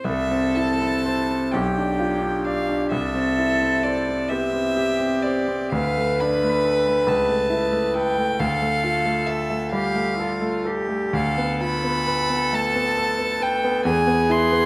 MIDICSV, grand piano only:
0, 0, Header, 1, 2, 480
1, 0, Start_track
1, 0, Tempo, 1006711
1, 25, Time_signature, 6, 3, 24, 8
1, 504, Tempo, 924499
1, 2424, Tempo, 946372
1, 3384, Tempo, 874636
1, 4824, Tempo, 906344
1, 5304, Tempo, 950872
1, 6264, Tempo, 888889
1, 7655, End_track
2, 0, Start_track
2, 0, Title_t, "Grand piano"
2, 0, Program_c, 0, 0
2, 0, Control_c, 0, 64, 127
2, 22, Note_on_c, 0, 36, 87
2, 37, Control_c, 0, 64, 0
2, 136, Control_c, 0, 64, 127
2, 149, Note_on_c, 0, 60, 68
2, 268, Note_on_c, 0, 64, 74
2, 341, Note_off_c, 0, 60, 0
2, 389, Note_on_c, 0, 60, 64
2, 456, Note_off_c, 0, 64, 0
2, 504, Note_on_c, 0, 72, 71
2, 578, Note_off_c, 0, 60, 0
2, 631, Note_on_c, 0, 60, 58
2, 701, Note_off_c, 0, 72, 0
2, 727, Note_off_c, 0, 36, 0
2, 751, Note_on_c, 0, 35, 85
2, 752, Note_off_c, 0, 60, 0
2, 759, Control_c, 0, 64, 0
2, 862, Control_c, 0, 64, 127
2, 878, Note_on_c, 0, 62, 65
2, 991, Note_on_c, 0, 65, 65
2, 1068, Note_off_c, 0, 62, 0
2, 1110, Note_on_c, 0, 62, 56
2, 1184, Note_off_c, 0, 65, 0
2, 1235, Note_on_c, 0, 74, 68
2, 1302, Note_off_c, 0, 62, 0
2, 1352, Note_on_c, 0, 62, 64
2, 1423, Note_off_c, 0, 74, 0
2, 1449, Note_off_c, 0, 35, 0
2, 1469, Note_on_c, 0, 36, 86
2, 1470, Note_off_c, 0, 62, 0
2, 1480, Control_c, 0, 64, 0
2, 1584, Control_c, 0, 64, 127
2, 1592, Note_on_c, 0, 60, 65
2, 1712, Note_on_c, 0, 64, 67
2, 1781, Note_off_c, 0, 60, 0
2, 1837, Note_on_c, 0, 60, 62
2, 1902, Note_off_c, 0, 64, 0
2, 1956, Note_on_c, 0, 72, 69
2, 2024, Note_off_c, 0, 60, 0
2, 2076, Note_on_c, 0, 60, 60
2, 2143, Note_off_c, 0, 72, 0
2, 2193, Note_on_c, 0, 59, 55
2, 2261, Note_off_c, 0, 60, 0
2, 2309, Note_off_c, 0, 59, 0
2, 2310, Note_on_c, 0, 60, 58
2, 2431, Note_on_c, 0, 67, 75
2, 2498, Note_off_c, 0, 60, 0
2, 2548, Note_on_c, 0, 60, 62
2, 2619, Note_off_c, 0, 67, 0
2, 2672, Note_on_c, 0, 72, 65
2, 2742, Note_off_c, 0, 60, 0
2, 2793, Note_on_c, 0, 60, 62
2, 2867, Note_off_c, 0, 72, 0
2, 2894, Note_off_c, 0, 36, 0
2, 2914, Note_on_c, 0, 38, 90
2, 2916, Note_off_c, 0, 60, 0
2, 2925, Control_c, 0, 64, 0
2, 3015, Control_c, 0, 64, 127
2, 3042, Note_on_c, 0, 57, 67
2, 3164, Note_on_c, 0, 62, 73
2, 3230, Note_off_c, 0, 57, 0
2, 3277, Note_on_c, 0, 57, 64
2, 3344, Note_off_c, 0, 62, 0
2, 3387, Note_on_c, 0, 69, 66
2, 3458, Note_off_c, 0, 57, 0
2, 3511, Note_on_c, 0, 57, 54
2, 3574, Note_off_c, 0, 69, 0
2, 3597, Note_off_c, 0, 38, 0
2, 3616, Note_on_c, 0, 37, 82
2, 3624, Note_off_c, 0, 57, 0
2, 3629, Control_c, 0, 64, 0
2, 3723, Control_c, 0, 64, 127
2, 3734, Note_on_c, 0, 57, 60
2, 3850, Note_on_c, 0, 64, 70
2, 3926, Note_off_c, 0, 57, 0
2, 3974, Note_on_c, 0, 57, 61
2, 4046, Note_off_c, 0, 64, 0
2, 4101, Note_on_c, 0, 69, 72
2, 4169, Note_off_c, 0, 57, 0
2, 4225, Note_on_c, 0, 57, 66
2, 4293, Note_off_c, 0, 69, 0
2, 4316, Note_off_c, 0, 37, 0
2, 4343, Note_off_c, 0, 57, 0
2, 4345, Note_on_c, 0, 38, 89
2, 4350, Control_c, 0, 64, 0
2, 4459, Control_c, 0, 64, 127
2, 4467, Note_on_c, 0, 57, 67
2, 4585, Note_on_c, 0, 65, 70
2, 4658, Note_off_c, 0, 57, 0
2, 4706, Note_on_c, 0, 57, 63
2, 4778, Note_off_c, 0, 65, 0
2, 4823, Note_on_c, 0, 69, 70
2, 4897, Note_off_c, 0, 57, 0
2, 4947, Note_on_c, 0, 57, 64
2, 5014, Note_off_c, 0, 69, 0
2, 5064, Note_on_c, 0, 55, 66
2, 5136, Note_off_c, 0, 57, 0
2, 5184, Note_off_c, 0, 55, 0
2, 5186, Note_on_c, 0, 57, 63
2, 5313, Note_on_c, 0, 69, 80
2, 5376, Note_off_c, 0, 57, 0
2, 5423, Note_on_c, 0, 57, 68
2, 5498, Note_off_c, 0, 69, 0
2, 5542, Note_on_c, 0, 69, 67
2, 5617, Note_off_c, 0, 57, 0
2, 5661, Note_on_c, 0, 57, 66
2, 5740, Note_off_c, 0, 69, 0
2, 5772, Note_off_c, 0, 38, 0
2, 5786, Note_on_c, 0, 38, 93
2, 5788, Note_off_c, 0, 57, 0
2, 5800, Control_c, 0, 64, 0
2, 5889, Control_c, 0, 64, 127
2, 5909, Note_on_c, 0, 59, 73
2, 6025, Note_on_c, 0, 65, 68
2, 6101, Note_off_c, 0, 59, 0
2, 6143, Note_on_c, 0, 59, 70
2, 6215, Note_off_c, 0, 65, 0
2, 6258, Note_on_c, 0, 71, 81
2, 6334, Note_off_c, 0, 59, 0
2, 6381, Note_on_c, 0, 59, 62
2, 6455, Note_off_c, 0, 71, 0
2, 6505, Note_on_c, 0, 57, 64
2, 6576, Note_off_c, 0, 59, 0
2, 6626, Note_off_c, 0, 57, 0
2, 6628, Note_on_c, 0, 59, 68
2, 6748, Note_on_c, 0, 69, 74
2, 6819, Note_off_c, 0, 59, 0
2, 6860, Note_on_c, 0, 59, 60
2, 6939, Note_off_c, 0, 69, 0
2, 6979, Note_on_c, 0, 71, 77
2, 7055, Note_off_c, 0, 59, 0
2, 7108, Note_on_c, 0, 59, 72
2, 7174, Note_off_c, 0, 71, 0
2, 7202, Note_off_c, 0, 38, 0
2, 7219, Note_on_c, 0, 40, 92
2, 7227, Note_off_c, 0, 59, 0
2, 7235, Control_c, 0, 64, 0
2, 7326, Control_c, 0, 64, 127
2, 7339, Note_on_c, 0, 59, 79
2, 7460, Note_on_c, 0, 64, 81
2, 7534, Note_off_c, 0, 59, 0
2, 7582, Note_on_c, 0, 59, 75
2, 7655, Note_off_c, 0, 40, 0
2, 7655, Note_off_c, 0, 59, 0
2, 7655, Note_off_c, 0, 64, 0
2, 7655, End_track
0, 0, End_of_file